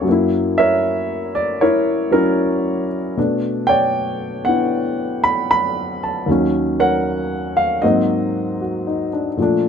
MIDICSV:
0, 0, Header, 1, 2, 480
1, 0, Start_track
1, 0, Tempo, 776197
1, 38, Time_signature, 4, 2, 24, 8
1, 5989, End_track
2, 0, Start_track
2, 0, Title_t, "Upright piano"
2, 0, Program_c, 0, 0
2, 0, Control_c, 0, 64, 127
2, 8, Note_on_c, 0, 42, 54
2, 26, Note_on_c, 0, 54, 51
2, 46, Control_c, 0, 64, 0
2, 54, Note_on_c, 0, 58, 49
2, 74, Note_on_c, 0, 64, 58
2, 158, Control_c, 0, 64, 127
2, 357, Note_on_c, 0, 76, 89
2, 366, Note_on_c, 0, 70, 68
2, 368, Note_on_c, 0, 73, 64
2, 812, Note_off_c, 0, 76, 0
2, 835, Note_on_c, 0, 74, 82
2, 988, Note_off_c, 0, 73, 0
2, 993, Note_off_c, 0, 70, 0
2, 996, Note_off_c, 0, 64, 0
2, 997, Note_on_c, 0, 73, 82
2, 1002, Note_off_c, 0, 74, 0
2, 1002, Note_on_c, 0, 70, 63
2, 1006, Note_on_c, 0, 64, 62
2, 1294, Note_off_c, 0, 73, 0
2, 1295, Note_off_c, 0, 54, 0
2, 1304, Note_off_c, 0, 70, 0
2, 1304, Note_on_c, 0, 54, 43
2, 1310, Note_off_c, 0, 64, 0
2, 1314, Note_on_c, 0, 70, 81
2, 1320, Note_on_c, 0, 64, 52
2, 1321, Note_on_c, 0, 61, 50
2, 1771, Note_off_c, 0, 70, 0
2, 1935, Note_off_c, 0, 61, 0
2, 1935, Note_off_c, 0, 64, 0
2, 1944, Note_off_c, 0, 42, 0
2, 1952, Note_off_c, 0, 54, 0
2, 1962, Note_on_c, 0, 47, 46
2, 1966, Note_off_c, 0, 58, 0
2, 1966, Control_c, 0, 64, 0
2, 1967, Note_on_c, 0, 57, 44
2, 1971, Note_on_c, 0, 62, 54
2, 2080, Control_c, 0, 64, 127
2, 2269, Note_on_c, 0, 79, 90
2, 2282, Note_on_c, 0, 73, 67
2, 2282, Note_on_c, 0, 74, 64
2, 2728, Note_off_c, 0, 79, 0
2, 2750, Note_on_c, 0, 78, 77
2, 2757, Note_on_c, 0, 59, 40
2, 2758, Note_off_c, 0, 62, 0
2, 2767, Note_on_c, 0, 62, 35
2, 2776, Note_on_c, 0, 64, 40
2, 2787, Note_off_c, 0, 78, 0
2, 3215, Note_off_c, 0, 73, 0
2, 3215, Note_off_c, 0, 74, 0
2, 3238, Note_on_c, 0, 83, 89
2, 3396, Note_off_c, 0, 83, 0
2, 3406, Note_on_c, 0, 83, 94
2, 3699, Note_off_c, 0, 83, 0
2, 3732, Note_on_c, 0, 81, 66
2, 3873, Note_on_c, 0, 39, 52
2, 3875, Note_off_c, 0, 81, 0
2, 3878, Note_off_c, 0, 59, 0
2, 3880, Note_off_c, 0, 47, 0
2, 3883, Note_off_c, 0, 57, 0
2, 3883, Note_off_c, 0, 62, 0
2, 3884, Note_on_c, 0, 51, 44
2, 3886, Control_c, 0, 64, 0
2, 3887, Note_off_c, 0, 64, 0
2, 3896, Note_on_c, 0, 54, 50
2, 3904, Note_on_c, 0, 61, 57
2, 3978, Control_c, 0, 64, 127
2, 4203, Note_on_c, 0, 73, 59
2, 4205, Note_on_c, 0, 78, 91
2, 4206, Note_on_c, 0, 70, 62
2, 4679, Note_on_c, 0, 77, 82
2, 4696, Note_off_c, 0, 78, 0
2, 4816, Note_off_c, 0, 73, 0
2, 4818, Note_off_c, 0, 70, 0
2, 4828, Note_off_c, 0, 77, 0
2, 4834, Note_off_c, 0, 54, 0
2, 4834, Note_on_c, 0, 75, 73
2, 4836, Note_off_c, 0, 39, 0
2, 4841, Note_off_c, 0, 51, 0
2, 4843, Note_on_c, 0, 54, 49
2, 4844, Note_on_c, 0, 44, 50
2, 4845, Note_on_c, 0, 66, 54
2, 4846, Control_c, 0, 64, 0
2, 4846, Note_on_c, 0, 72, 49
2, 4850, Note_on_c, 0, 58, 48
2, 4851, Note_off_c, 0, 61, 0
2, 4854, Note_on_c, 0, 60, 57
2, 4938, Control_c, 0, 64, 127
2, 5317, Note_off_c, 0, 66, 0
2, 5327, Note_on_c, 0, 66, 43
2, 5486, Note_on_c, 0, 63, 44
2, 5611, Note_off_c, 0, 75, 0
2, 5619, Note_off_c, 0, 66, 0
2, 5646, Note_on_c, 0, 62, 47
2, 5730, Note_off_c, 0, 63, 0
2, 5777, Note_off_c, 0, 72, 0
2, 5797, Note_on_c, 0, 46, 56
2, 5800, Note_off_c, 0, 54, 0
2, 5801, Note_off_c, 0, 44, 0
2, 5804, Note_off_c, 0, 58, 0
2, 5805, Control_c, 0, 64, 0
2, 5806, Note_off_c, 0, 60, 0
2, 5809, Note_on_c, 0, 53, 47
2, 5815, Note_on_c, 0, 57, 49
2, 5817, Note_off_c, 0, 62, 0
2, 5827, Note_on_c, 0, 62, 59
2, 5906, Control_c, 0, 64, 127
2, 5989, Note_off_c, 0, 46, 0
2, 5989, Note_off_c, 0, 53, 0
2, 5989, Note_off_c, 0, 57, 0
2, 5989, Note_off_c, 0, 62, 0
2, 5989, End_track
0, 0, End_of_file